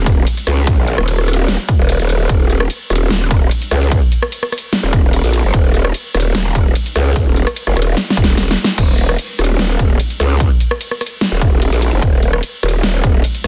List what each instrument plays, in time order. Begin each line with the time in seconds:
Already playing: wobble bass D#1
0.06 kick, closed hi-hat
0.27 closed hi-hat, ride
0.37 closed hi-hat
0.47 wobble bass C#2, cross-stick, closed hi-hat
0.67 kick, closed hi-hat, ride
0.78 wobble bass A#1
0.87 closed hi-hat
0.98 wobble bass D#1, cross-stick
1.08 closed hi-hat, ride
1.18 cross-stick
1.28 cross-stick, closed hi-hat
1.33 closed hi-hat
1.48 snare, closed hi-hat, ride
1.69 kick, closed hi-hat
1.79 wobble bass D#1
1.89 closed hi-hat, ride
1.99 wobble bass D#1, closed hi-hat
2.09 closed hi-hat
2.29 wobble bass D#1, kick, closed hi-hat, ride
2.50 closed hi-hat
2.60 cross-stick
2.70 closed hi-hat, ride
2.90 wobble bass D#1, cross-stick, closed hi-hat
2.96 closed hi-hat
3.10 snare, closed hi-hat, ride
3.31 kick, closed hi-hat
3.51 closed hi-hat, ride
3.62 closed hi-hat
3.71 wobble bass C#2, cross-stick, closed hi-hat
3.92 kick, closed hi-hat, ride
4.12 closed hi-hat
4.22 cross-stick
4.32 closed hi-hat, ride
4.43 cross-stick
4.52 cross-stick, closed hi-hat
4.58 closed hi-hat
4.73 snare, closed hi-hat, ride
4.83 wobble bass D#1
4.93 kick, closed hi-hat
5.04 wobble bass D#1
5.13 closed hi-hat, ride
5.24 wobble bass A#1, closed hi-hat
5.33 closed hi-hat
5.44 wobble bass F#1
5.54 wobble bass D#1, kick, closed hi-hat, ride
5.74 closed hi-hat
5.85 cross-stick
5.94 closed hi-hat, ride
6.15 wobble bass D#1, cross-stick, closed hi-hat
6.20 closed hi-hat
6.35 snare, closed hi-hat, ride
6.55 kick, closed hi-hat
6.75 closed hi-hat, ride
6.86 closed hi-hat
6.96 wobble bass C#2, cross-stick, closed hi-hat
7.16 kick, closed hi-hat, ride
7.27 wobble bass D#1
7.36 closed hi-hat
7.47 cross-stick, closed hi-hat
7.56 closed hi-hat, ride
7.67 wobble bass F#1, cross-stick
7.77 wobble bass D#1, cross-stick, closed hi-hat
7.82 closed hi-hat
7.97 snare, closed hi-hat, ride
8.10 snare
8.17 wobble bass D#1, kick, closed hi-hat
8.24 snare
8.37 snare, closed hi-hat, ride
8.48 snare, closed hi-hat
8.58 closed hi-hat
8.64 snare
8.78 wobble bass D#1, kick, closed hi-hat, crash, ride
8.98 closed hi-hat
9.09 cross-stick
9.19 closed hi-hat, ride
9.39 wobble bass D#1, cross-stick, closed hi-hat
9.44 closed hi-hat
9.59 snare, closed hi-hat, ride
9.79 kick, closed hi-hat
10.00 closed hi-hat, ride
10.10 closed hi-hat
10.20 wobble bass C#2, cross-stick, closed hi-hat
10.40 kick, closed hi-hat, ride
10.60 closed hi-hat
10.71 cross-stick
10.81 closed hi-hat, ride
10.91 cross-stick
11.01 cross-stick, closed hi-hat
11.06 closed hi-hat
11.21 snare, closed hi-hat, ride
11.32 wobble bass D#1
11.41 kick, closed hi-hat
11.52 wobble bass D#1
11.62 closed hi-hat, ride
11.72 wobble bass A#1, closed hi-hat
11.82 closed hi-hat
11.93 wobble bass F#1
12.02 wobble bass D#1, kick, closed hi-hat, ride
12.23 closed hi-hat
12.33 cross-stick
12.43 closed hi-hat, ride
12.63 wobble bass D#1, cross-stick, closed hi-hat
12.68 closed hi-hat
12.83 snare, closed hi-hat, ride
13.04 kick, closed hi-hat
13.24 closed hi-hat, ride
13.35 closed hi-hat